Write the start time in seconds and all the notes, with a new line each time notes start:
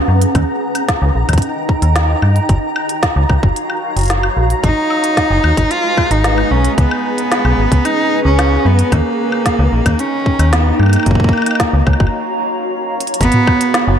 Already playing: C#4 G#4 B4 F#5 A#5
0.08 F#2
0.22 closed hi-hat
0.35 D#2 D#4 D#5 G5 A#5, kick, closed hi-hat, high woodblock
0.75 closed hi-hat, high woodblock
0.89 kick, snare, closed hi-hat
1.02 C#2
1.15 A#1
1.29 D#2, kick, closed hi-hat, high woodblock
1.33 kick, closed hi-hat
1.38 kick, closed hi-hat
1.42 closed hi-hat
1.69 kick
1.82 D#2, closed hi-hat
1.96 snare, closed hi-hat
2.22 G2, high woodblock
2.36 closed hi-hat
2.49 F#1 F#4 C#5 F5, kick, closed hi-hat
2.76 high woodblock
2.89 closed hi-hat
3.03 kick, snare, closed hi-hat
3.16 C#2
3.29 C#2, kick, high woodblock
3.43 F#1, kick
3.56 closed hi-hat
3.70 high woodblock
3.97 F#1, closed hi-hat
3.99 closed hi-hat
4.01 closed hi-hat
4.03 closed hi-hat
4.06 closed hi-hat
4.08 snare, closed hi-hat
4.10 closed hi-hat
4.23 high woodblock
4.37 A#1
4.50 closed hi-hat
4.64 G#1 G#3 D#4 G#4 B4 G#5, kick, closed hi-hat
4.90 high woodblock
5.04 closed hi-hat
5.17 kick, snare, closed hi-hat
5.31 F#1
5.44 D#2, high woodblock
5.57 G#1, kick, closed hi-hat
5.71 F4, closed hi-hat
5.97 kick, high woodblock
6.11 G#1 D#4, closed hi-hat
6.24 snare, closed hi-hat
6.38 high woodblock
6.51 B1 C#4
6.65 closed hi-hat
6.78 C#2 B3 C#4 B4, kick, closed hi-hat
6.91 high woodblock
7.18 closed hi-hat
7.32 snare, closed hi-hat
7.45 B1, high woodblock
7.58 G#1
7.72 C#2, kick, closed hi-hat
7.85 D#4, closed hi-hat, high woodblock
8.25 C#2 C#4
8.39 snare, closed hi-hat, high woodblock
8.65 F#2 B3
8.79 closed hi-hat
8.92 D#2 A#3 D#4 D#5 G5 A#5, kick, closed hi-hat, high woodblock
9.32 high woodblock
9.46 kick, snare, closed hi-hat
9.59 C#2
9.72 A#1
9.86 D#2, kick, closed hi-hat, high woodblock
9.99 C#4, closed hi-hat
10.26 kick
10.39 D#2, closed hi-hat, high woodblock
10.53 B3, snare, closed hi-hat
10.80 G2 A#3, high woodblock
10.83 high woodblock
10.86 high woodblock
10.90 closed hi-hat, high woodblock
10.93 high woodblock
10.96 high woodblock
11.00 high woodblock
11.03 F#1 F#4 C#5 F5 A#5, kick, closed hi-hat, high woodblock
11.11 kick
11.15 kick
11.20 kick
11.24 kick
11.29 kick
11.33 high woodblock
11.38 high woodblock
11.42 high woodblock
11.46 closed hi-hat, high woodblock
11.51 high woodblock
11.55 high woodblock
11.60 kick, snare, closed hi-hat
11.73 C#2
11.87 C#2, kick, high woodblock
11.93 high woodblock
12.00 F#1, kick, high woodblock
12.07 high woodblock
13.00 closed hi-hat
13.07 closed hi-hat
13.14 closed hi-hat
13.21 G#1 G#3 B3 G#4 B4 F#5, kick, closed hi-hat
13.23 closed hi-hat
13.32 closed hi-hat, mid tom
13.47 kick, high woodblock
13.61 closed hi-hat
13.74 snare, closed hi-hat
13.88 F#1